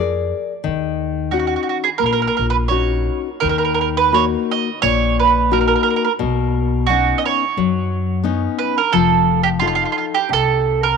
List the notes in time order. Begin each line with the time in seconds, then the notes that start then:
Already playing: F2 G#4 A#4 D5
0.64 D#2 D#3
1.31 C#4 D#4 F#4
1.39 F#4
1.47 F#4
1.56 F#4
1.63 F#4
1.69 F#4
1.84 G#4
1.98 A#3 A#4
2.02 A#1 A#4
2.13 A#4
2.22 A#4
2.27 A#4
2.37 A#1 A#4
2.50 B4
2.68 C#4 D#4 F#4 C#5
3.40 D#2 D#3 A#4
3.49 A#4
3.58 A#4
3.65 A#4
3.74 A#4
3.81 A#4
3.97 B4
4.12 A#3 D#4 F#4 C#5
4.51 D#5
4.82 A#1 A#2 C#5
5.20 B4
5.51 A#3 D#4 F#4 A#4
5.61 A#4
5.68 A#4
5.75 A#4
5.83 A#4
5.90 A#4
5.96 A#4
6.05 A#4
6.19 B1 B2
6.87 B3 C#4 D#4 F#4
7.18 D#5
7.26 C#5
7.57 F#2 F#3
8.24 B3 C#4 D#4
8.59 B4
8.78 A#4
8.93 F1 F3 A4
9.43 G4
9.60 D#4 F4 A4
9.67 F4
9.75 F4
9.85 F4
9.92 F4
9.98 F4
10.14 G4
10.29 C2 C3
10.33 A4
10.83 A#4